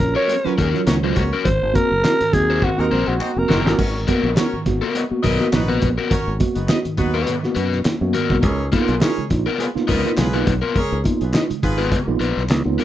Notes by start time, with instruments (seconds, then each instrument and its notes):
Already playing: alto saxophone A#4
0.00 fingered electric bass A#1, tine electric piano C#4 F4, kick, closed hi-hat
0.15 overdriven electric guitar C#4 F#4 A#4, alto saxophone C#5
0.28 closed hi-hat, muted conga
0.45 tine electric piano F#3 C#4 F4, horn section C#4 F#4 A#4 C#5, muted fingered electric bass stroke, snare
0.58 fingered electric bass D#2, tine electric piano D#3, overdriven electric guitar C#4 F#4 A#4, kick, closed hi-hat, low conga
0.74 tine electric piano F#3 C#4 F4, snare
0.86 fingered electric bass C#2, tine electric piano D#3, horn section C#4 F#4 A#4 C#5, snare, clap, closed hi-hat, high conga
1.03 tine electric piano F#3 C#4 F4, overdriven electric guitar C#4 F#4 C5
1.15 fingered electric bass C#2, horn section C#4 F#4 A#4 C#5, tine electric piano C#4 F4, kick, closed hi-hat, high conga
1.33 overdriven electric guitar C#4 F#4 A#4
1.45 fingered electric bass G#1, tine electric piano G#2 D#3, alto saxophone C5, kick, closed hi-hat
1.61 fingered electric bass G#1, tine electric piano C4 F#4
1.73 tine electric piano A#3 C4 F#4, alto saxophone A#4, kick, closed hi-hat, muted conga
1.92 fingered electric bass F#1
2.03 tine electric piano C4 F#4, snare, clap, closed hi-hat, high conga
2.20 tine electric piano G#2 D#3, muted fingered electric bass stroke, closed hi-hat
2.32 fingered electric bass D#2, tine electric piano C4 F#4, alto saxophone G#4, kick, closed hi-hat, low conga
2.50 overdriven electric guitar C4 F#4 C5
2.62 tine electric piano G#2 D#3, alto saxophone F#4, kick, muted conga
2.77 fingered electric bass D#2, tine electric piano A#3 C4 F#4, horn section C4 D#4 F#4 C5, alto saxophone A#4
2.91 fingered electric bass A#1, overdriven electric guitar C4 F#4 C5, tine electric piano C4 F#4, muted conga, low conga
3.08 fingered electric bass A#1, alto saxophone F#4
3.20 horn section C4 D#4 F#4 C5, clap, high conga
3.36 fingered electric bass F1, tine electric piano A#3 C4 F#4, alto saxophone A#4
3.48 fingered electric bass F#1, tine electric piano G#2 D#3, overdriven electric guitar C4 F#4 A#4, horn section C4 D#4 F#4 C5, snare, high conga
3.65 fingered electric bass G1, tine electric piano A#3 C4 F#4, snare
3.78 fingered electric bass G#1, tine electric piano G#2 D#3, horn section C#4 F#4 A#4 C#5, kick, crash
3.95 tine electric piano B3 F#4
4.07 tine electric piano A#3 B3 F#4, overdriven electric guitar B3 F#4 A#4, kick, closed hi-hat, muted conga
4.23 fingered electric bass A#1, horn section B3 D#4 F#4 B4
4.36 tine electric piano B3 F#4, horn section C#4 F#4 A#4 C#5, snare, clap, closed hi-hat, high conga
4.53 tine electric piano G#2 D#3, muted fingered electric bass stroke
4.66 fingered electric bass G#1, tine electric piano B3 F#4, kick, snare, closed hi-hat
4.81 overdriven electric guitar B3 F#4 A#4
4.95 horn section B3 D#4 F#4 B4, closed hi-hat, muted conga
5.11 tine electric piano A#3 B3 F#4, muted fingered electric bass stroke
5.23 fingered electric bass B1, tine electric piano G#2 D#3, overdriven electric guitar B3 F#4 A#4, horn section D#4 B4 D#5, kick, closed hi-hat, low conga
5.40 tine electric piano A#3 B3 F#4, snare
5.52 fingered electric bass A#1, tine electric piano G#2 D#3, horn section B3 D#4 F#4 B4, snare, clap, closed hi-hat, high conga
5.69 tine electric piano A#3 B3 F#4, overdriven electric guitar B3 F#4 B4
5.82 fingered electric bass A#1, tine electric piano B3 F#4, kick, closed hi-hat, high conga
5.98 overdriven electric guitar B3 F#4 A#4
6.10 tine electric piano G#2 D#3, horn section C#4 F#4 A#4 C#5, kick, closed hi-hat
6.27 fingered electric bass G#1, tine electric piano B3 F#4
6.40 tine electric piano A#3 B3 F#4, kick, closed hi-hat, muted conga
6.55 fingered electric bass F#1, horn section B3 D#4 F#4 B4, closed hi-hat
6.68 tine electric piano B3 F#4, horn section D#4 B4 D#5, snare, clap, closed hi-hat, high conga
6.85 tine electric piano G#2 D#3, muted fingered electric bass stroke, closed hi-hat
6.97 fingered electric bass D#2, horn section B3 D#4 F#4 B4, tine electric piano B3 F#4, kick, closed hi-hat, low conga
7.14 overdriven electric guitar B3 F#4 B4
7.27 tine electric piano G#2 D#3, closed hi-hat, muted conga
7.43 tine electric piano A#3 B3 F#4, snare
7.55 fingered electric bass F#2, overdriven electric guitar B3 F#4 B4, tine electric piano F#4, closed hi-hat
7.72 snare
7.85 muted fingered electric bass stroke, snare, clap, closed hi-hat, high conga
8.01 fingered electric bass F#2, tine electric piano A#3 B3 F#4
8.14 tine electric piano G#2 D#3, overdriven electric guitar B3 F#4 A#4, closed hi-hat, high conga
8.30 fingered electric bass C2, tine electric piano A#3 B3 F#4, kick, snare
8.42 fingered electric bass C#2, tine electric piano C#3 G#3, horn section C#4 G#4 A#4 C#5, kick, closed hi-hat
8.59 tine electric piano D#4 F4
8.72 tine electric piano A#3 B3 D#4 F4, overdriven electric guitar B3 F4 A#4, kick, closed hi-hat, muted conga
8.87 fingered electric bass B1, horn section B3 F4 G#4 B4, closed hi-hat
9.00 horn section C#4 G#4 A#4 C#5, tine electric piano D#4 F4, snare, clap, closed hi-hat, high conga
9.18 tine electric piano C#3 G#3, muted fingered electric bass stroke
9.30 fingered electric bass A#1, tine electric piano D#4 F4, kick, snare, closed hi-hat
9.46 overdriven electric guitar B3 F4 A#4
9.59 horn section B3 F4 G#4 B4, closed hi-hat, muted conga
9.75 tine electric piano A#3 B3 D#4 F4, muted fingered electric bass stroke, snare
9.87 fingered electric bass C#2, tine electric piano C#3 G#3, overdriven electric guitar B3 F4 A#4, horn section D#4 B4 D#5, kick, closed hi-hat, muted conga, low conga
10.05 tine electric piano A#3 B3 D#4 F4, snare
10.17 fingered electric bass B1, tine electric piano C#3 G#3, horn section B3 F4 G#4 B4, snare, clap, closed hi-hat, high conga
10.34 tine electric piano A#3 B3 D#4 F4, overdriven electric guitar B3 F4 B4
10.46 fingered electric bass B1, tine electric piano D#4 F4, kick, closed hi-hat, high conga
10.62 overdriven electric guitar B3 F4 A#4
10.76 tine electric piano C#3 G#3, horn section C#4 G#4 A#4 C#5, kick, closed hi-hat
10.92 fingered electric bass C#2, tine electric piano D#4 F4
11.04 tine electric piano A#3 B3 D#4 F4, kick, closed hi-hat, muted conga
11.21 fingered electric bass B1, horn section B3 F4 G#4 B4, closed hi-hat
11.33 tine electric piano D#4 F4, horn section D#4 B4 D#5, snare, clap, closed hi-hat, high conga
11.50 tine electric piano C#3 G#3, muted fingered electric bass stroke, closed hi-hat
11.62 fingered electric bass G#1, horn section B3 F4 G#4 B4, tine electric piano D#4 F4, kick, closed hi-hat, low conga
11.78 overdriven electric guitar B3 F4 B4
11.91 tine electric piano C#3 G#3, kick, closed hi-hat, muted conga
12.07 fingered electric bass A#1, tine electric piano A#3 B3 D#4 F4
12.20 fingered electric bass A#1, overdriven electric guitar B3 F4 B4, tine electric piano D#4 F4, closed hi-hat, muted conga
12.37 fingered electric bass B1, snare
12.49 fingered electric bass C#2, snare, clap, closed hi-hat, high conga
12.65 fingered electric bass C#2, tine electric piano A#3 B3 D#4 F4
12.78 tine electric piano C#3 G#3, overdriven electric guitar B3 F4 A#4, open hi-hat, high conga